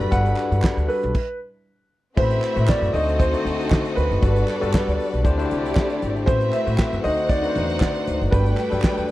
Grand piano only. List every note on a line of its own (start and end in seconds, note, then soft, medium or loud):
0.11 0.91 F#5 loud
0.88 1.36 B4 medium
2.17 2.65 C5 loud
2.69 2.95 D5 loud
2.93 3.20 D#5 loud
3.19 3.99 C5 medium
3.96 4.69 B4 loud
6.26 6.53 C5 loud
6.52 7.00 E5 medium
7.04 7.30 D#5 loud
7.29 7.78 D5 loud
7.80 8.33 D5 medium
8.31 9.11 B4 medium